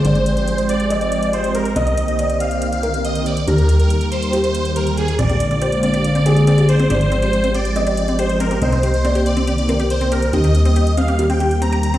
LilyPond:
<<
  \new Staff \with { instrumentName = "Felt piano" } { \time 4/4 \key c \minor \tempo 4 = 140 d''2 ees''2 | ees''4 d''4. bes'4. | g'2 g'2 | d''4 c''4. aes'4. |
d''2 ees''2 | ees''4 d''4. bes'4. | g'2 g'2 | }
  \new Staff \with { instrumentName = "Supersaw synth" } { \time 4/4 \key c \minor c''8 r16 c''8 r16 d''8 r16 d''8 r16 c''8 bes'8 | ees''8 r16 ees''8 r16 f''8 r16 f''8 r16 ees''8 d''8 | bes'8 r16 bes'8 r16 c''8 r16 c''8 r16 bes'8 aes'8 | d''8 r16 d''8 r16 d''8 r16 d''8 r16 d''8 c''8 |
c''8 r16 c''8 r16 d''8 r16 d''8 r16 c''8 bes'8 | c''8 r16 c''8 r16 d''8 r16 d''8 r16 c''8 bes'8 | ees''8 r16 ees''8 r16 f''8 r16 g''8 r16 bes''8 bes''8 | }
  \new Staff \with { instrumentName = "Synth arpeggio sound" } { \time 4/4 \key c \minor r1 | r1 | r1 | c'16 g'16 r16 c'16 g'16 r16 c'16 g'16 r16 c'16 g'16 r16 c'16 g'16 r16 c'16 |
g'16 r16 c'16 g'16 r16 c'16 g'16 r16 c'16 g'16 r16 c'16 g'16 r16 c'16 g'16 | r16 c'16 g'16 r16 c'16 g'16 r16 c'16 g'16 r16 c'16 g'16 r16 c'16 g'16 r16 | c'16 g'16 r16 c'16 g'16 r16 c'16 g'16 r16 c'16 g'16 r16 c'16 g'16 r16 c'16 | }
  \new Staff \with { instrumentName = "Analog synth pad" } { \time 4/4 \key c \minor <f aes c' g'>8 <f aes c' g'>16 <f aes c' g'>8 <f aes c' g'>8 <f aes c' g'>8 <f aes c' g'>8 <f aes c' g'>16 <f aes c' g'>16 <f aes c' g'>8 r16 | <ees bes c' g'>8 <ees bes c' g'>16 <ees bes c' g'>8 <ees bes c' g'>8 <ees bes c' g'>8 <ees bes c' g'>8 <ees bes c' g'>16 <ees bes c' g'>16 <ees bes c' g'>8 r16 | <ees g bes g'>8 <ees g bes g'>16 <ees g bes g'>8 <ees g bes g'>8 <ees g bes g'>8 <ees g bes g'>8 <ees g bes g'>16 <ees g bes g'>16 <ees g bes g'>8 r16 | <d aes bes f'>8 <d aes bes f'>16 <d aes bes f'>8 <d aes bes f'>8 <d aes bes f'>8 <d aes bes f'>8 <d aes bes f'>16 <d aes bes f'>16 <d aes bes f'>8 r16 |
<f aes c' g'>8 <f aes c' g'>16 <f aes c' g'>8 <f aes c' g'>8 <f aes c' g'>8 <f aes c' g'>8 <f aes c' g'>16 <f aes c' g'>16 <f aes c' g'>8 r16 | <ees bes c' g'>8 <ees bes c' g'>16 <ees bes c' g'>8 <ees bes c' g'>8 <ees bes c' g'>8 <ees bes c' g'>8 <ees bes c' g'>16 <ees bes c' g'>16 <ees bes c' g'>8 r16 | <ees g bes g'>8 <ees g bes g'>16 <ees g bes g'>8 <ees g bes g'>8 <ees g bes g'>8 <ees g bes g'>8 <ees g bes g'>16 <ees g bes g'>16 <ees g bes g'>8 r16 | }
  \new Staff \with { instrumentName = "Analog synth bass" } { \clef bass \time 4/4 \key c \minor aes,,1 | c,1 | ees,1 | bes,,1 |
aes,,1 | c,1 | ees,1 | }
  \new DrumStaff \with { instrumentName = "Drums" } \drummode { \time 4/4 hh16 hh16 hh16 hh16 hh16 hh16 hh16 hh16 hh16 hh16 hh16 hh16 hh16 hh16 hh16 hh16 | hh16 hh16 hh16 hh16 hh16 hh16 hh16 hh16 hh16 hh16 hh16 hh16 hh16 hh16 hh16 hh16 | hh16 hh16 hh16 hh16 hh16 hh16 hh16 hh16 hh16 hh16 hh16 hh16 hh16 hh16 hh16 hh16 | hh16 hh16 hh16 hh16 hh16 hh16 hh16 hh16 hh16 hh16 hh16 hh16 hh16 hh16 hh16 hh16 |
hh16 hh16 hh16 hh16 hh16 hh16 hh16 hh16 hh16 hh16 hh16 hh16 hh16 hh16 hh16 hh16 | hh16 hh16 hh16 hh16 hh16 hh16 hh16 hh16 hh16 hh16 hh16 hh16 hh16 hh16 hh16 hh16 | hh16 hh16 hh16 hh16 hh16 hh16 hh16 hh16 hh16 hh16 hh16 hh16 hh16 hh16 hh16 hh16 | }
>>